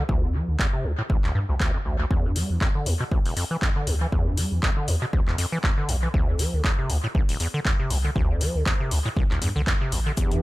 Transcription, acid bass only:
0.09 0.24 D2 loud
0.23 0.36 F2 medium
0.34 0.50 F3 medium
0.48 0.57 D3 loud
0.59 0.67 E2 medium
0.73 0.86 C3 medium
0.84 0.92 C2 medium
0.99 1.02 A2 loud
1.10 1.18 C2 medium
1.24 1.33 D1 medium
1.35 1.40 G2 loud
1.49 1.55 D2 medium
1.60 1.72 D2 loud
1.74 1.78 F2 medium
1.85 1.97 D2 medium
1.99 2.06 D2 loud
2.11 2.26 E2 loud
2.25 2.37 G2 medium
2.36 2.51 G3 loud
2.50 2.59 E3 loud
2.61 2.69 F2 medium
2.75 2.88 D3 medium
2.86 2.94 D2 loud
3.00 3.04 B2 loud
3.12 3.19 D2 medium
3.26 3.35 E1 medium
3.37 3.44 F2 loud
3.51 3.57 E3 loud
3.62 3.70 F2 medium
3.76 3.89 D3 medium
3.87 3.95 D2 loud
4.01 4.07 E3 medium
4.12 4.28 E2 loud
4.26 4.39 G2 medium
4.38 4.53 G3 medium
4.52 4.61 E3 loud
4.63 4.71 F2 medium
4.77 4.89 D3 medium
4.88 4.96 D2 loud
5.02 5.06 B2 loud
5.13 5.21 D2 loud
5.27 5.36 E1 medium
5.38 5.46 F2 loud
5.52 5.59 E3 loud
5.63 5.71 F2 medium
5.78 5.90 D3 medium
5.89 5.97 D2 loud
6.03 6.09 E3 medium
6.14 6.30 D2 loud
6.28 6.41 F2 medium
6.39 6.55 F3 loud
6.53 6.62 D3 loud
6.64 6.72 E2 medium
6.79 6.91 C3 medium
6.90 6.97 C2 loud
7.04 7.08 A2 loud
7.15 7.23 C2 medium
7.29 7.38 D1 loud
7.40 7.48 E2 loud
7.54 7.60 D3 loud
7.65 7.73 E2 medium
7.79 7.92 C3 medium
7.90 7.98 C2 loud
8.05 8.11 D3 medium
8.16 8.31 D2 loud
8.30 8.42 F2 medium
8.41 8.56 F3 loud
8.55 8.64 D3 loud
8.66 8.74 E2 medium
8.80 8.93 C3 medium
8.91 8.99 C2 loud
9.05 9.09 A2 loud
9.16 9.24 C2 loud
9.31 9.40 D1 loud
9.42 9.49 E2 medium
9.56 9.62 D3 medium
9.67 9.75 E2 medium
9.81 9.94 C3 medium
9.92 10.00 C2 medium
10.06 10.12 D3 medium
10.17 10.33 E2 loud
10.31 10.42 G2 medium

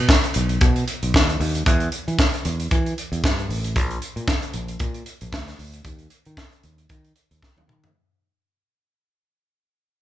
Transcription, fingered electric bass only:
0.36 0.57 B1 medium
0.62 0.83 B2 loud
1.03 1.12 B1 medium
1.15 1.36 D#2 medium
1.40 1.62 D#2 loud
1.66 1.88 E2 loud
2.08 2.17 E3 medium
2.45 2.67 E2 loud
2.71 2.93 E3 loud
3.12 3.21 E2 loud
3.24 3.45 G2 loud
3.49 3.76 A1 medium
3.76 3.97 A#1 medium
4.16 4.26 A#2 medium
4.54 4.76 A#1 medium
4.80 5.02 A#2 loud
5.22 5.31 A#1 medium
5.33 5.54 D2 loud
5.59 5.80 D2 medium
5.85 6.07 D#2 medium
6.26 6.36 D#3 medium
6.64 6.85 D#2 medium
6.90 7.12 D#3 medium
7.31 7.40 D#2 medium
7.57 7.66 D#2 medium
7.68 7.90 D#3 loud

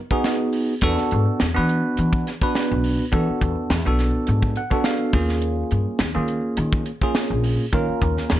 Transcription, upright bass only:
0.83 0.95 E2 medium
1.12 1.24 G#2 medium
1.41 1.53 E2 medium
1.57 1.80 E3 medium
1.98 2.22 E3 medium
2.71 2.95 B1 medium
3.13 3.25 E3 loud
3.30 muted upright bass stroke soft
3.42 3.54 E2 medium
3.70 3.83 E2 medium
3.86 4.10 B1 medium
4.28 4.52 G#2 medium
5.13 5.62 D#2 medium
5.72 5.84 G2 medium
6.00 6.13 D#2 medium
6.16 6.40 D#3 medium
6.57 6.82 D#3 medium
7.30 7.55 A#1 medium
7.73 7.86 D#3 medium
7.89 muted upright bass stroke soft
8.02 8.15 D#2 medium
8.32 8.40 D#2 medium

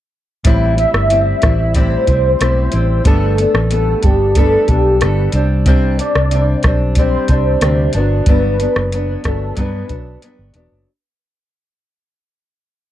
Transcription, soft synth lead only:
0.79 1.72 E5 loud
1.77 3.09 C5 loud
3.07 3.72 A4 medium
3.72 4.06 A4 medium
4.04 4.36 G4 medium
4.37 4.67 A4 medium
4.69 5.30 G4 medium
5.99 6.60 D5 loud
6.98 7.91 C5 loud
8.29 9.21 B4 loud
9.26 9.60 A4 medium
9.58 10.55 B4 medium

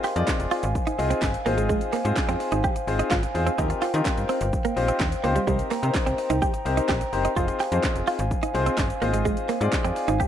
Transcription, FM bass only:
0.16 0.24 F2 loud
0.40 0.47 F1 loud
0.63 0.78 G#1 loud
0.99 1.14 C2 loud
1.22 1.37 G1 loud
1.46 1.76 G#1 loud
2.05 2.13 G#2 loud
2.29 2.36 F2 medium
2.52 2.67 G#1 medium
2.87 3.03 G#1 loud
3.11 3.26 G#1 loud
3.35 3.50 E2 medium
3.58 3.74 D#2 loud
3.94 4.02 D#3 loud
4.18 4.25 G2 medium
4.41 4.56 G1 loud
4.77 4.92 A#1 loud
5.00 5.15 D#2 medium
5.24 5.39 C#2 loud
5.47 5.62 C2 loud
5.83 5.91 C3 loud
6.07 6.14 C2 medium
6.30 6.45 C2 medium
6.66 6.81 C2 loud
6.89 7.04 A#1 loud
7.13 7.28 F#1 medium
7.36 7.51 F1 loud
7.72 7.79 F2 loud
7.96 8.03 F1 medium
8.19 8.34 G#1 loud
8.55 8.70 C2 loud
8.78 8.93 G1 loud
9.02 9.32 G#1 loud
9.61 9.68 G#2 loud
9.84 9.92 F2 medium
10.08 10.23 G#1 loud

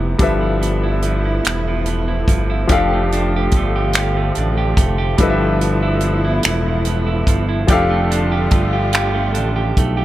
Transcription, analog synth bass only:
0.00 0.15 F1 medium
0.20 1.41 G1 loud
1.46 2.24 E1 medium
2.29 2.66 G1 medium
2.70 3.49 F1 loud
3.53 4.32 G1 medium
4.37 4.74 A1 medium
4.78 5.15 F1 medium
5.20 6.40 G1 medium
6.45 7.24 E1 loud
7.28 7.65 G1 medium
7.70 8.48 F1 loud
8.53 9.38 G1 medium
9.36 9.74 A1 medium
9.78 10.05 B1 medium

